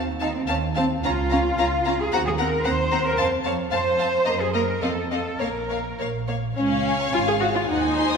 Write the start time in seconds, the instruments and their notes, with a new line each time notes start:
Already playing: double bass section D#2
0.20 viola section C4, cello section D#4, violin section F5 A5
0.36 cello section C4
0.47 double bass section D#2, viola section C4, cello section C#4, violin section F5 A5
0.76 viola section C4, cello section C4, violin section F5 A5
1.03 double bass section C#2, viola section C#4, cello section F4, violin section F5 A#5
1.31 viola section C#4, violin section F5 A#5
1.59 double bass section C#2, viola section C#4, violin section F5 A#5
1.85 viola section C#4, violin section F5 A#5
2.00 cello section G#4
2.12 double bass section D#2, viola section C4, cello section F#4, violin section F#5 A#5
2.27 cello section G#4
2.38 viola section C4, cello section A#4, violin section F#5 A#5
2.64 double bass section D#2, viola section C4, cello section C5, violin section F#5 A#5
2.91 viola section C4, violin section F#5 A#5
3.06 cello section A#4
3.18 double bass section F2, viola section C4, cello section C5, violin section F5 A5
3.44 viola section C4, cello section C#5, violin section F5 A5
3.71 double bass section F2, viola section C4, cello section C5, violin section F5 A5
3.98 viola section C4, violin section F5 A5
4.25 double bass section F#2, viola section A#3, violin section D#5 A#5
4.41 cello section G#4
4.54 viola section A#3, cello section A#4, violin section D#5 A#5
4.82 double bass section F2, viola section C4, cello section A4, violin section D#5 F5
5.11 viola section C4, cello section A4, violin section D#5 F5
5.40 double bass section A#1, viola section A#3, cello section A#4, violin section C#5 F5
5.70 viola section A#3, violin section C#5 F5
5.99 double bass section A#1, viola section A#3, violin section C#5 F5
6.28 viola section A#3, violin section C#5 F5
6.56 double bass section C#2, cello section C#2, viola section C#4, violin section C#5 F5
6.70 violin section F5
6.86 violin section G#5
7.00 violin section C#6
7.13 double bass section G#1, cello section G#2, viola section F4, violin section G#5
7.27 viola section G#4, violin section F5
7.40 viola section F#4, violin section C#5
7.55 viola section F4, violin section F5
7.68 cello section D#2, double bass section D#2, viola section D#4, violin section C5 F#5 G#5
7.83 violin section G#5
7.97 violin section C6
8.10 violin section D#6